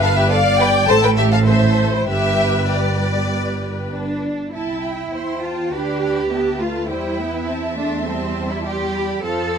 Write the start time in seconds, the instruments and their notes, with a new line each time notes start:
Already playing: double bass section G1, cello section G2, viola section B4
0.00 violin section A4 F5
0.16 violin section G4 E5
0.30 violin section A4 F5, viola section D5
0.59 violin section B4 G5
0.88 double bass section A1, cello section A2, viola section A4, violin section C5 A5
1.03 violin section B4 G5
1.17 violin section G4 E5
1.32 violin section A4 F5
1.47 violin section A4 E5, viola section C5
1.92 violin section E4 C5
2.07 double bass section G1, cello section G2, violin section G4 E5, viola section B4
2.69 violin section G4 D5
3.93 cello section D4
4.53 double bass section C2, cello section E4, violin section E5 G5 A5
4.84 violin section G5
5.13 double bass section E2, violin section C5 G5 C6
5.43 cello section F4, violin section A5
5.72 double bass section D2, viola section D4, cello section G4, violin section B4 D5 B5
6.02 violin section B5
6.31 viola section B3, violin section E5 A5
6.60 viola section A3, cello section F4, violin section F5
6.89 double bass section E2, viola section G3, cello section E4, violin section C5 G5
7.18 viola section B3, violin section E5
7.47 viola section C4, violin section G5 A5
7.77 viola section A3, cello section D4, violin section C6
8.06 viola section G3, cello section C4
8.51 cello section E4
8.65 cello section G4, violin section D5 G5 C6
8.94 violin section B5
9.23 double bass section F2, viola section F3, cello section A4, violin section C5 F5 A5
9.53 violin section A5